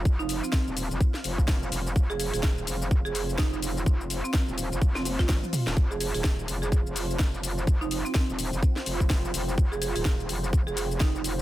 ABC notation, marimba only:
X:1
M:4/4
L:1/16
Q:"Swing 16ths" 1/4=126
K:Fm
V:1 name="Marimba"
z E E C C z8 z3 | z A A A2 z4 A A z E E z2 | z3 C2 z4 C2 F3 z2 | z A A A2 z2 A2 z6 z |
z E E C C z8 z3 | z A A A2 z4 A A z E E z2 |]